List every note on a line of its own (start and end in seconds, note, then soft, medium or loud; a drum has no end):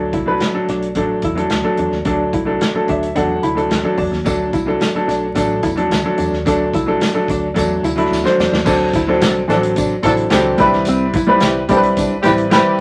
0.00 0.17 F#3 medium
0.00 0.17 A3 medium
0.00 0.17 D4 medium
0.00 0.18 A4 medium
0.13 0.37 C2 medium
0.13 0.31 E4 medium
0.13 kick loud
0.13 closed hi-hat medium
0.13 muted conga soft
0.26 0.48 F#3 medium
0.26 0.48 A3 medium
0.26 0.48 D4 medium
0.26 0.49 B4 medium
0.40 snare medium
0.40 closed hi-hat medium
0.40 high conga medium
0.53 0.85 F#3 medium
0.53 0.86 A3 medium
0.53 0.86 D4 medium
0.53 0.86 A4 medium
0.53 muted fingered electric bass stroke soft
0.68 0.96 B1 medium
0.68 0.87 D4 medium
0.68 snare soft
0.68 closed hi-hat medium
0.82 closed hi-hat medium
0.95 1.20 A1 medium
0.95 1.27 F#3 medium
0.95 1.28 A3 medium
0.95 1.28 D4 medium
0.95 1.14 D4 medium
0.95 1.28 A4 medium
0.95 kick medium
0.95 closed hi-hat medium
0.95 muted conga soft
1.22 1.47 E2 medium
1.22 1.42 E4 medium
1.22 kick medium
1.22 closed hi-hat medium
1.22 low conga medium
1.35 1.57 F#3 medium
1.35 1.58 A3 medium
1.35 1.58 D4 medium
1.35 1.58 A4 medium
1.35 closed hi-hat soft
1.50 1.63 D2 medium
1.50 snare medium
1.50 closed hi-hat medium
1.50 high conga medium
1.63 1.96 F#3 medium
1.63 1.96 A3 medium
1.63 1.96 D4 medium
1.63 1.96 A4 medium
1.77 1.90 E2 medium
1.77 1.97 D4 medium
1.77 closed hi-hat medium
1.91 2.04 D#2 medium
1.91 snare soft
1.91 high conga medium
2.05 2.29 D2 medium
2.05 2.37 F#3 medium
2.05 2.38 A3 medium
2.05 2.23 D4 medium
2.05 2.38 D4 medium
2.05 2.38 A4 medium
2.05 kick loud
2.05 closed hi-hat medium
2.33 2.57 C2 medium
2.33 2.52 E4 medium
2.33 kick medium
2.33 closed hi-hat medium
2.45 2.67 F#3 medium
2.45 2.68 A3 medium
2.45 2.68 D4 medium
2.45 2.68 A4 medium
2.60 snare loud
2.60 closed hi-hat medium
2.60 high conga medium
2.74 3.06 F#3 medium
2.74 3.06 A3 medium
2.74 3.07 D4 medium
2.74 3.07 A4 medium
2.74 muted fingered electric bass stroke soft
2.88 3.12 D2 medium
2.88 3.07 D4 medium
2.88 3.15 E5 medium
2.88 kick medium
2.88 closed hi-hat medium
3.03 closed hi-hat medium
3.15 3.40 E2 medium
3.15 3.47 F#3 medium
3.15 3.48 A3 medium
3.15 3.33 D4 medium
3.15 3.48 D4 medium
3.15 3.48 A4 medium
3.15 3.41 F#5 medium
3.15 kick medium
3.15 closed hi-hat medium
3.15 muted conga soft
3.15 low conga medium
3.43 3.67 D2 medium
3.43 3.61 E4 medium
3.43 3.69 B5 medium
3.43 closed hi-hat medium
3.43 low conga medium
3.55 3.77 F#3 medium
3.55 3.78 A3 medium
3.55 3.78 D4 medium
3.55 3.78 A4 medium
3.55 closed hi-hat soft
3.70 3.82 D2 medium
3.70 3.96 A5 medium
3.70 snare loud
3.70 closed hi-hat medium
3.70 high conga medium
3.83 4.16 F#3 medium
3.83 4.16 A3 medium
3.83 4.16 D4 medium
3.83 4.16 A4 medium
3.98 4.10 E2 medium
3.98 4.16 D4 medium
3.98 4.24 A5 medium
3.98 kick medium
3.98 open hi-hat soft
4.12 4.24 D#2 medium
4.12 snare soft
4.12 high conga medium
4.24 4.50 D2 loud
4.24 4.57 F#3 medium
4.24 4.57 A3 medium
4.24 4.58 D4 medium
4.24 4.44 D4 medium
4.24 4.58 A4 medium
4.24 kick loud
4.24 closed hi-hat medium
4.24 tambourine medium
4.24 muted conga soft
4.53 4.77 C2 medium
4.53 4.71 E4 medium
4.53 kick medium
4.53 closed hi-hat medium
4.53 tambourine medium
4.53 muted conga soft
4.66 4.88 F#3 medium
4.66 4.88 A3 medium
4.66 4.88 D4 medium
4.66 4.89 A4 medium
4.80 snare medium
4.80 closed hi-hat medium
4.80 tambourine medium
4.80 high conga medium
4.94 5.26 F#3 medium
4.94 5.26 A3 medium
4.94 5.27 D4 medium
4.94 5.27 A4 medium
4.94 muted fingered electric bass stroke soft
5.08 5.32 B1 loud
5.08 5.26 D4 medium
5.08 snare soft
5.08 closed hi-hat medium
5.08 tambourine medium
5.35 5.63 A1 medium
5.35 5.67 F#3 medium
5.35 5.67 A3 medium
5.35 5.54 D4 medium
5.35 5.68 D4 medium
5.35 5.68 A4 medium
5.35 kick medium
5.35 closed hi-hat medium
5.35 tambourine medium
5.35 muted conga soft
5.63 5.87 E2 medium
5.63 5.81 E4 medium
5.63 kick medium
5.63 closed hi-hat medium
5.63 tambourine medium
5.63 low conga medium
5.76 5.98 F#3 medium
5.76 5.98 A3 medium
5.76 5.98 D4 medium
5.76 5.99 A4 medium
5.76 closed hi-hat soft
5.90 6.02 D2 medium
5.90 snare medium
5.90 closed hi-hat medium
5.90 tambourine medium
5.90 high conga medium
6.04 6.36 F#3 medium
6.04 6.36 A3 medium
6.04 6.37 D4 medium
6.04 6.37 A4 medium
6.18 6.31 E2 medium
6.18 6.36 D4 medium
6.18 closed hi-hat medium
6.18 tambourine medium
6.31 6.44 D#2 medium
6.31 snare soft
6.31 high conga medium
6.45 6.70 D2 loud
6.45 6.77 F#3 medium
6.45 6.78 A3 medium
6.45 6.78 D4 medium
6.45 6.64 D4 loud
6.45 6.79 A4 medium
6.45 kick loud
6.45 closed hi-hat medium
6.45 tambourine medium
6.45 muted conga soft
6.73 6.97 C2 medium
6.73 6.92 E4 medium
6.73 kick medium
6.73 closed hi-hat medium
6.73 tambourine medium
6.73 muted conga soft
6.86 7.08 F#3 medium
6.86 7.08 A3 medium
6.86 7.09 D4 medium
6.86 7.09 A4 loud
7.00 snare loud
7.00 closed hi-hat medium
7.00 tambourine medium
7.00 high conga medium
7.14 7.46 F#3 medium
7.14 7.46 A3 medium
7.14 7.47 D4 medium
7.14 7.47 A4 medium
7.14 muted fingered electric bass stroke soft
7.28 7.52 D2 medium
7.28 7.48 D4 medium
7.28 kick medium
7.28 closed hi-hat medium
7.28 tambourine medium
7.54 7.80 E2 loud
7.54 7.87 F#3 medium
7.54 7.87 A3 medium
7.54 7.88 D4 medium
7.54 7.75 D4 medium
7.54 7.88 A4 medium
7.54 kick medium
7.54 closed hi-hat medium
7.54 muted conga soft
7.54 low conga medium
7.58 tambourine loud
7.83 8.07 D2 medium
7.83 8.02 E4 medium
7.83 closed hi-hat medium
7.83 tambourine medium
7.83 low conga medium
7.96 8.18 F#3 medium
7.96 8.18 A3 medium
7.96 8.18 D4 medium
7.96 8.19 E4 medium
7.96 closed hi-hat medium
8.11 8.23 D2 medium
8.11 snare medium
8.11 tambourine medium
8.11 high conga medium
8.24 8.56 F#3 medium
8.24 8.56 A3 medium
8.24 8.57 D4 medium
8.24 8.57 C5 medium
8.24 snare medium
8.24 high conga medium
8.38 8.50 E2 medium
8.38 8.58 D4 medium
8.38 snare medium
8.38 tambourine medium
8.52 8.64 D#2 medium
8.52 snare medium
8.52 high conga medium
8.64 8.90 D2 loud
8.64 8.97 F#3 medium
8.64 8.98 C4 medium
8.64 8.98 D4 medium
8.64 8.85 D4 medium
8.64 8.98 A4 medium
8.64 kick loud
8.64 crash medium
8.64 tambourine medium
8.93 9.23 D2 medium
8.93 9.13 E4 medium
8.93 kick loud
8.93 closed hi-hat medium
8.93 tambourine medium
8.93 muted conga soft
9.07 9.39 F#3 medium
9.07 9.40 C4 medium
9.07 9.40 D4 medium
9.07 9.40 A4 medium
9.20 9.45 C2 medium
9.20 9.33 F#3 medium
9.20 9.33 D4 medium
9.20 9.33 A4 medium
9.20 snare loud
9.20 closed hi-hat medium
9.20 tambourine medium
9.20 high conga medium
9.48 9.97 A1 medium
9.48 9.55 E3 medium
9.48 9.61 F#3 medium
9.48 9.91 C4 medium
9.48 9.60 D4 medium
9.48 9.91 D4 medium
9.48 9.68 D4 medium
9.48 9.60 A4 medium
9.48 9.92 A4 medium
9.48 snare soft
9.48 closed hi-hat medium
9.48 tambourine medium
9.54 9.94 F#3 medium
9.63 closed hi-hat medium
9.76 9.95 D4 medium
9.76 kick medium
9.76 closed hi-hat medium
9.76 tambourine loud
9.76 muted conga soft
9.76 low conga medium
10.02 10.28 A1 medium
10.02 10.24 F#3 medium
10.02 10.13 F#3 medium
10.02 10.25 C4 medium
10.02 10.13 D4 loud
10.02 10.25 D4 medium
10.02 10.23 E4 medium
10.02 10.13 A4 loud
10.02 10.25 A4 medium
10.02 kick medium
10.02 closed hi-hat medium
10.02 tambourine medium
10.02 low conga medium
10.17 closed hi-hat medium
10.30 10.55 C#2 medium
10.30 10.70 E3 medium
10.30 10.58 F#3 medium
10.30 10.70 C4 medium
10.30 10.57 C4 medium
10.30 10.59 D4 medium
10.30 10.70 G4 loud
10.30 10.59 A4 loud
10.30 snare loud
10.30 closed hi-hat medium
10.30 high conga medium
10.34 tambourine loud
10.57 10.82 C2 loud
10.57 11.13 G3 medium
10.57 11.14 C4 medium
10.57 10.78 D4 medium
10.57 11.14 E4 medium
10.57 11.15 B4 loud
10.57 kick loud
10.57 closed hi-hat medium
10.57 tambourine medium
10.73 snare soft
10.73 high conga medium
10.85 11.10 C2 loud
10.85 11.06 C4 loud
10.85 closed hi-hat medium
10.85 tambourine medium
10.85 muted conga soft
11.13 11.38 B1 medium
11.13 11.33 E4 medium
11.13 kick loud
11.13 closed hi-hat medium
11.13 tambourine medium
11.27 11.59 G3 medium
11.27 11.60 C4 medium
11.27 11.60 E4 medium
11.27 11.60 B4 loud
11.39 11.65 C2 medium
11.39 11.52 E3 medium
11.39 11.53 C4 medium
11.39 11.53 G4 medium
11.39 snare loud
11.39 closed hi-hat medium
11.39 tambourine medium
11.39 high conga medium
11.67 12.17 B1 loud
11.67 11.80 E3 medium
11.67 12.11 G3 medium
11.67 11.80 C4 medium
11.67 12.12 C4 medium
11.67 11.88 D4 medium
11.67 12.12 E4 medium
11.67 11.80 G4 medium
11.67 11.76 A4 medium
11.67 kick medium
11.67 closed hi-hat medium
11.72 tambourine medium
11.77 12.15 B4 medium
11.83 closed hi-hat medium
11.97 12.15 D4 medium
11.97 kick medium
11.97 closed hi-hat medium
11.97 tambourine loud
11.97 muted conga soft
11.97 low conga medium
12.22 12.60 A1 medium
12.22 12.32 E3 medium
12.22 12.45 G3 medium
12.22 12.32 C4 medium
12.22 12.46 C4 medium
12.22 12.46 E4 medium
12.22 12.32 G4 loud
12.22 12.46 B4 medium
12.22 closed hi-hat medium
12.22 tambourine medium
12.26 12.44 E4 medium
12.26 low conga medium
12.38 closed hi-hat medium
12.50 12.80 E3 medium
12.50 12.80 G3 medium
12.50 12.80 C4 medium
12.50 12.80 E4 medium
12.50 12.80 G4 loud
12.50 12.80 B4 loud
12.50 snare loud
12.50 closed hi-hat medium
12.50 tambourine medium
12.55 high conga medium